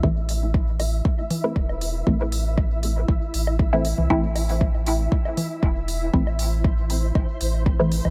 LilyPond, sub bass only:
\new Staff \with { instrumentName = "Sub bass" } { \clef bass \time 4/4 \key a \minor \tempo 4 = 118 a,,2 r4 e,,4 | a,,2 a,,16 r16 a,,4~ a,,16 c,16 | a,,2 r4 e,,4 | a,,2 a,,16 r16 a,,4~ a,,16 c,16 | }